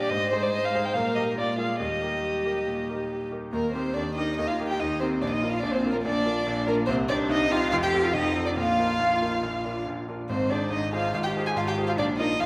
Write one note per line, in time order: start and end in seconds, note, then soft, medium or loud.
0.00 0.14 A#2 medium
0.00 0.14 D4 soft
0.00 0.13 G4 medium
0.00 0.14 G4 soft
0.00 0.14 D5 soft
0.00 0.11 D5 medium
0.09 0.31 G#2 medium
0.09 0.91 G#3 medium
0.09 0.97 C5 medium
0.09 0.30 D#5 medium
0.30 0.70 D#4 soft
0.30 0.71 G#4 soft
0.30 0.44 C5 medium
0.30 0.71 C5 soft
0.42 0.51 D5 medium
0.52 0.66 D#5 medium
0.65 0.87 F5 medium
0.75 0.94 D#4 soft
0.75 0.94 G#4 soft
0.75 0.94 C5 medium
0.85 0.95 G5 medium
0.93 1.16 A#2 medium
0.93 1.34 G3 medium
0.93 1.37 A#4 medium
0.93 1.14 F5 medium
1.15 1.35 D#4 soft
1.15 1.35 G4 soft
1.15 1.35 A#4 soft
1.15 1.23 D#5 medium
1.36 1.58 A#2 medium
1.36 1.77 G#3 medium
1.36 1.80 F4 medium
1.36 1.58 D5 medium
1.58 1.78 F4 soft
1.58 1.78 G#4 soft
1.58 1.78 A#4 soft
1.58 1.79 F5 medium
1.79 2.01 D#2 soft
1.79 3.29 G3 soft
1.79 3.29 G4 medium
1.79 3.28 D#5 medium
2.01 2.41 D#4 soft
2.01 2.41 G4 soft
2.01 2.42 A#4 soft
2.45 2.65 D#4 soft
2.45 2.65 G4 soft
2.45 2.65 A#4 soft
2.67 2.88 A#2 soft
2.89 3.28 D#4 soft
2.89 3.28 G4 soft
2.89 3.28 A#4 soft
3.31 3.51 D#4 soft
3.31 3.51 G4 soft
3.31 3.51 A#4 soft
3.52 3.73 D#2 soft
3.52 3.73 D#3 soft
3.52 3.72 A#3 medium
3.52 3.75 A#4 medium
3.52 3.71 A#4 medium
3.72 3.94 C4 medium
3.72 3.93 D#4 soft
3.72 3.94 G4 soft
3.72 3.94 A#4 soft
3.72 3.96 C5 medium
3.72 3.94 C5 medium
3.94 4.16 D#2 soft
3.94 4.17 D#3 soft
3.94 4.03 D4 medium
3.94 4.14 D5 medium
3.94 4.03 D5 medium
4.15 4.37 D#4 medium
4.15 4.36 D#4 soft
4.15 4.36 G4 soft
4.15 4.37 A#4 soft
4.15 4.36 D#5 medium
4.15 4.37 D#5 medium
4.36 4.59 D#2 soft
4.36 4.59 D#3 soft
4.36 4.48 D#4 medium
4.36 4.49 D#5 medium
4.36 4.48 D#5 medium
4.47 4.58 F4 medium
4.47 4.68 F5 medium
4.47 4.56 F5 medium
4.60 4.78 D#4 soft
4.60 4.78 G4 soft
4.60 4.79 A#4 soft
4.68 4.80 G4 medium
4.68 4.82 G5 medium
4.68 4.74 G5 medium
4.80 5.01 D#2 soft
4.80 5.00 D#3 soft
4.80 5.02 D#4 medium
4.80 5.00 D#5 medium
4.80 4.88 D#5 medium
5.00 5.23 C4 medium
5.00 5.20 D#4 soft
5.00 5.20 G4 soft
5.00 5.20 A#4 soft
5.00 5.09 C5 medium
5.00 5.23 C5 medium
5.21 5.42 A#1 medium
5.21 5.42 A#2 medium
5.21 5.32 D4 medium
5.21 5.34 D5 medium
5.21 5.30 D5 medium
5.30 5.41 D#4 medium
5.30 5.52 D#5 medium
5.30 5.55 D#5 medium
5.43 5.61 F4 soft
5.43 5.62 A#4 soft
5.50 5.61 F4 medium
5.50 5.62 F5 medium
5.50 5.64 F5 medium
5.60 5.83 A#1 medium
5.60 5.83 A#2 medium
5.60 5.74 D4 medium
5.60 5.73 D5 medium
5.64 5.68 D5 medium
5.72 5.94 C4 medium
5.72 5.92 C5 medium
5.72 5.82 C5 medium
5.86 6.04 F4 soft
5.86 6.04 A#4 medium
5.92 6.06 A#3 medium
5.92 5.97 A#4 medium
5.92 5.98 A#4 medium
6.03 6.25 A#1 medium
6.03 6.25 A#2 medium
6.03 6.69 D4 medium
6.03 6.65 D5 medium
6.03 6.66 D5 medium
6.26 6.44 F4 medium
6.26 6.45 A#4 medium
6.46 6.67 A#1 medium
6.46 6.67 A#2 medium
6.67 6.87 A#3 medium
6.67 6.86 F4 medium
6.67 6.86 A#4 medium
6.67 6.75 A#4 medium
6.67 6.76 A#4 medium
6.86 7.09 C2 medium
6.86 7.09 C3 medium
6.86 6.96 C4 loud
6.86 6.94 C5 medium
6.86 6.98 C5 medium
7.08 7.28 C4 medium
7.08 7.31 D4 medium
7.08 7.28 D#4 medium
7.08 7.29 G4 medium
7.08 7.16 D5 medium
7.08 7.19 D5 medium
7.29 7.50 C2 medium
7.29 7.50 C3 medium
7.29 7.53 D#4 loud
7.29 7.53 D#5 medium
7.50 7.69 C4 medium
7.50 7.70 D#4 medium
7.50 7.71 F4 loud
7.50 7.70 G4 medium
7.50 7.71 F5 medium
7.72 7.93 F1 medium
7.72 7.93 F2 medium
7.72 7.76 F4 loud
7.72 7.76 F5 medium
7.83 8.06 G4 loud
7.83 7.91 G5 medium
7.83 8.02 G5 medium
7.93 8.12 C4 medium
7.93 8.12 F4 medium
7.93 8.12 A4 medium
8.02 8.14 F4 medium
8.02 8.15 F5 medium
8.14 8.35 F1 medium
8.14 8.35 F2 medium
8.14 8.50 D#4 medium
8.14 8.47 D#5 medium
8.14 8.46 D#5 medium
8.35 8.55 C4 soft
8.35 8.55 F4 soft
8.35 8.55 A4 medium
8.46 8.57 D4 medium
8.46 8.59 D5 medium
8.46 8.51 D5 medium
8.57 8.79 A#1 soft
8.57 8.78 A#2 medium
8.57 9.85 F4 medium
8.57 9.84 F5 medium
8.57 9.87 F5 medium
8.79 8.98 D#4 soft
8.79 8.98 F4 soft
8.79 8.99 A#4 medium
9.00 9.21 A#1 medium
9.00 9.21 A#2 soft
9.21 9.41 D#4 soft
9.21 9.41 F4 soft
9.21 9.41 A#4 soft
9.43 9.64 A#1 soft
9.43 9.64 A#2 medium
9.64 9.84 D4 soft
9.64 9.85 F4 soft
9.64 9.85 A#4 soft
9.87 10.08 A#1 soft
9.87 10.08 A#2 soft
10.09 10.28 D4 soft
10.09 10.28 F4 soft
10.09 10.28 A#4 soft
10.29 10.50 G#1 medium
10.29 10.50 G#2 medium
10.29 10.52 C4 medium
10.29 10.52 C5 medium
10.29 10.50 C5 medium
10.50 10.72 D4 medium
10.50 10.70 D#4 soft
10.50 10.70 G#4 soft
10.50 10.71 C5 soft
10.50 10.71 D5 medium
10.50 10.72 D5 medium
10.70 10.92 G#1 medium
10.70 10.92 G#2 soft
10.70 10.92 D#4 medium
10.70 10.92 D#5 medium
10.70 10.80 D#5 medium
10.92 11.12 D#4 soft
10.92 11.14 F4 medium
10.92 11.12 G#4 soft
10.92 11.12 C5 soft
10.92 11.13 F5 medium
10.92 11.14 F5 medium
11.14 11.35 G#1 medium
11.14 11.35 G#2 medium
11.14 11.27 F4 medium
11.14 11.18 F5 medium
11.14 11.19 F5 medium
11.23 11.47 G4 medium
11.23 11.31 G5 medium
11.23 11.33 G5 medium
11.36 11.55 F4 soft
11.36 11.55 G#4 soft
11.36 11.55 C5 soft
11.46 11.54 G#4 medium
11.46 11.50 G#5 medium
11.46 11.59 G#5 medium
11.55 11.77 G#1 medium
11.55 11.76 G#2 soft
11.55 11.69 F4 medium
11.55 11.61 F5 medium
11.55 11.67 F5 medium
11.68 11.90 G4 medium
11.68 11.76 G5 medium
11.78 11.97 F4 soft
11.78 11.97 G#4 soft
11.78 11.97 C5 medium
11.87 12.00 F4 medium
11.87 11.92 F5 medium
11.87 11.93 F5 medium
11.98 12.18 A#1 medium
11.98 12.18 A#2 medium
11.98 12.18 D4 medium
11.98 12.06 D5 medium
11.98 12.07 D5 medium
12.17 12.40 D#4 medium
12.17 12.38 F4 medium
12.17 12.39 A#4 medium
12.17 12.42 D#5 medium
12.17 12.28 D#5 medium
12.40 12.46 A#1 medium
12.40 12.46 A#2 medium
12.40 12.46 F4 loud
12.40 12.46 F5 medium